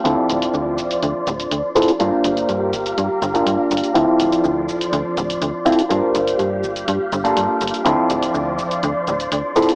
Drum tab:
HH |x---x-x-------x-x---x-x-x---xxx-|x---x-x-x---x-x-x---x-x-x---xxx-|x---x-x-------x-x---x-x-x---xxx-|x---x-x-x-----x-x---x-x-x---xxx-|
SH |x---x-x-x---x-x-x---x-x-x---x-x-|x---x-x-x---x-x-x---x-x-x---x-x-|x---x-x-x---x-x-x---x-x-x---x-x-|x---x-x-x---x-x-x---x-x-x---x-x-|

HH |x---x-x-------x-x---x-x-x---xxx-|
SH |x---x-x-x---x-x-x---x-x-x---x-x-|